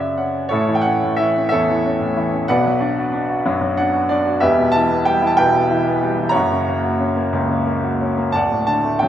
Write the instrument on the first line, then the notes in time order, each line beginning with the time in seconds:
grand piano
Already playing: F#2 C#3 D5
0.00 E5
0.17 C#4 F#5
0.49 A1 A2 E4 A4 C#5
0.69 E3
0.75 G5
0.81 C#4 F#5
1.04 A2
1.17 E3 E5
1.36 C#4
1.49 E3 A4 C#5 E5
1.53 E2
1.69 E3
1.86 C#4
2.01 A2
2.17 E3
2.33 C#4
2.48 B1 B2 B4 D5 F#5
2.66 F#3
2.81 D4
2.98 F#4
3.13 D4
3.29 F#4
3.46 F#2 F#3
3.61 F#3
3.77 D4 F#5
3.93 F#4
4.09 D4 D5
4.26 F#4
4.40 E1 E2 G4 B4 E5
4.58 B2
4.72 E3 A5
4.90 B3
5.05 G3 G5
5.22 E3
5.27 A5
5.37 B1 B2 B4 G5
5.54 B2
5.70 E3
5.87 B3
6.03 G3
6.20 E3
6.29 C#5 F#5 A#5
6.35 F#1 F#2
6.51 C#3
6.68 A#3
6.84 F#4
7.00 C#4
7.16 A#3
7.33 C#2 C#3
7.49 C#3
7.66 A#3
7.83 F#4
8.01 C#4
8.17 A#3
8.32 D1 D2 D5 F#5 A5
8.52 A2
8.67 D3 A5
8.85 A3
8.99 F#3 G5